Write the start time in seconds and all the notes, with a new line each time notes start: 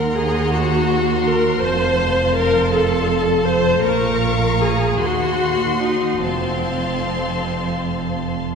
Already playing: D#2 A#4 F#5 A#5 C6
0.16 G#4
0.51 F#4
1.24 A#4
1.61 F1 F2 C5 F5 A5
2.35 A#4
2.70 A4
3.44 C5
3.81 A#1 A#2 A#4 F5 A#5 C#6
4.61 G#4
5.00 D#2 F#4 F#5 C6
5.80 D#4
6.21 F1 F2 C4 F5 A5 C6